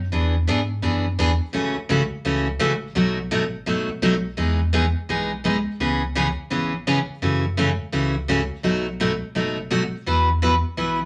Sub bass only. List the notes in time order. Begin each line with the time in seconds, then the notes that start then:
Already playing: F#2
0.13 E2
0.47 G#2
0.83 F#2
1.19 E2
1.41 E2
1.55 A1
1.76 A1
1.89 B1
2.12 B1
2.25 C#2
2.60 A1
2.95 B1
3.31 G#1
3.66 A1
3.88 A1
4.01 B1
4.37 E2
5.09 B1
5.79 C#2
6.50 G#1
7.22 F#2
7.93 C#2
8.64 B1
9.35 F#1
10.07 E2
10.77 B1